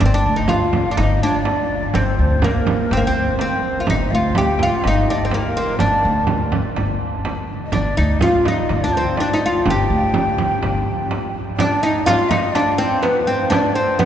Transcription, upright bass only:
0.02 0.20 G1 medium
0.26 0.81 D2 medium
0.98 1.16 G1 medium
1.94 2.13 G1 medium
2.19 2.74 D2 medium
2.91 3.09 G1 medium
3.89 4.07 G1 medium
4.12 4.67 D2 medium
4.85 5.03 G1 medium
5.81 5.99 G1 medium
6.05 6.60 D2 medium
6.77 6.95 G1 medium
7.73 7.92 G1 medium
7.98 8.53 D2 medium
8.70 8.89 G1 medium
9.66 9.84 G1 medium
9.90 10.46 D2 medium
10.63 10.82 G1 medium

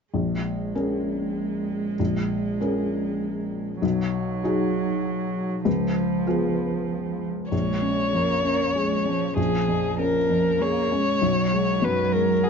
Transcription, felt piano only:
0.14 0.74 A#1 soft
0.75 1.95 C#4 soft
0.75 1.95 G#4 soft
0.75 1.95 A#4 soft
1.99 2.59 A#1 soft
2.61 3.79 C#4 soft
2.61 3.79 G#4 soft
2.61 3.79 A#4 soft
3.82 4.41 B1 soft
4.44 5.62 D#4 soft
4.44 5.62 F#4 soft
4.44 5.62 G#4 soft
5.65 6.25 C#2 soft
6.26 7.47 B3 soft
6.26 7.48 F4 soft
6.26 7.48 G#4 soft
7.51 9.33 A#1 soft
7.81 8.32 C#4 soft
8.13 8.63 F2 soft
8.44 8.94 C#4 soft
8.75 9.25 G#4 soft
9.05 9.55 C#4 soft
9.36 11.16 A#1 soft
9.68 10.17 F2 soft
9.99 10.48 C#4 soft
10.30 10.78 F2 soft
10.61 11.09 G#4 soft
10.92 11.22 C#4 soft
11.22 12.50 B1 soft
11.52 12.01 G#3 soft
11.82 12.31 F#2 soft
12.14 12.50 G#3 soft
12.43 12.50 F#5 soft

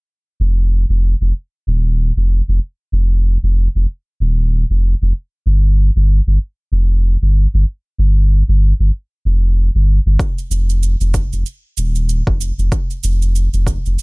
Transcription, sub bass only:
0.40 0.85 F1 medium
0.89 1.15 F1 medium
1.21 1.32 F1 medium
1.67 2.11 D#1 medium
2.16 2.41 F1 medium
2.48 2.59 F1 medium
2.92 3.37 F1 medium
3.43 3.68 F1 medium
3.75 3.86 F1 medium
4.20 4.64 D#1 medium
4.70 4.94 F1 medium
5.02 5.12 F1 loud
5.46 5.90 G1 medium
5.96 6.21 G1 medium
6.27 6.38 G1 medium
6.72 7.16 F1 medium
7.22 7.47 G1 medium
7.54 7.65 G1 loud
7.98 8.43 G1 medium
8.48 8.73 G1 loud
8.80 8.91 G1 medium
9.25 9.69 F1 medium
9.75 10.00 G1 medium
10.06 10.17 G1 medium
10.50 10.95 F1 medium
11.00 11.25 F1 loud
11.32 11.43 F1 medium
11.77 12.22 D#1 medium
12.27 12.52 F1 medium
12.58 12.69 F1 medium
13.04 13.48 F1 medium
13.53 13.78 F1 medium
13.86 13.97 F1 medium

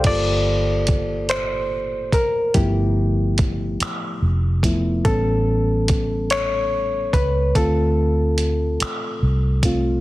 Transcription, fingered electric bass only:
0.05 2.13 G1 medium
2.13 2.51 F1 medium
2.55 3.76 G1 loud
3.81 muted fingered electric bass stroke soft
4.22 5.01 F1 medium
5.06 7.09 A1 medium
7.14 7.51 C#2 medium
7.56 8.76 D2 medium
8.81 muted fingered electric bass stroke soft
9.22 10.01 C2 medium

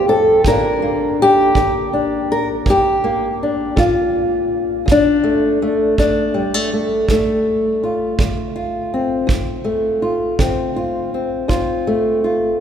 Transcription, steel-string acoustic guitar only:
0.00 0.40 A3 soft
0.00 0.40 C4 soft
0.08 0.45 F2 medium
0.08 0.45 A4 medium
0.46 1.12 G2 medium
0.46 1.55 D3 soft
0.46 0.81 A#3 soft
0.46 1.93 D4 soft
0.46 1.20 A#4 loud
0.82 3.03 A#3 soft
1.22 2.31 G4 loud
1.56 2.22 D3 medium
1.93 3.42 D4 soft
2.32 2.48 A#4 loud
2.66 3.32 G2 medium
2.66 4.52 G4 medium
3.04 4.83 A#3 soft
3.43 3.78 D4 soft
3.76 4.43 D3 medium
3.76 4.88 F4 medium
4.86 5.53 D2 medium
4.92 5.98 D4 medium
5.24 5.62 A3 soft
5.62 6.34 A3 soft
5.99 6.64 D3 medium
5.99 8.19 D4 medium
6.34 6.54 G3 soft
6.54 6.72 A3 soft
6.73 7.10 A3 soft
7.10 7.75 D2 medium
7.10 9.26 A3 soft
7.83 8.55 F4 soft
8.19 8.85 D3 medium
8.56 10.02 F4 soft
8.94 9.25 C4 soft
9.27 9.94 D2 medium
9.64 11.86 A3 soft
10.02 10.76 F4 soft
10.39 11.05 D3 medium
10.39 11.13 C4 soft
10.76 11.48 F4 soft
11.14 12.60 C4 soft
11.48 12.15 D2 medium
11.48 12.24 F4 soft
11.87 12.60 A3 soft
12.24 12.60 F4 soft

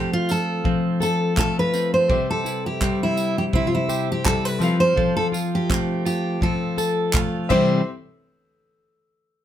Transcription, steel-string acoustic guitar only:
0.00 0.11 G4 medium
0.13 0.30 F4 medium
0.31 0.98 A4 medium
1.03 1.36 A4 medium
1.39 1.57 A4 medium
1.59 1.93 B4 medium
1.94 2.30 C5 medium
2.31 2.63 A4 medium
2.66 2.99 G4 medium
3.03 3.36 E4 medium
3.38 3.43 G4 medium
3.55 3.67 E4 medium
3.67 3.74 F4 medium
3.75 4.08 E4 medium
4.12 4.26 G4 medium
4.26 4.45 A4 medium
4.45 4.80 B4 medium
4.80 5.14 C5 medium
5.17 5.26 A4 medium
5.55 6.03 G4 medium
6.06 6.43 G4 medium
6.43 7.47 A4 medium
7.50 7.84 C5 medium

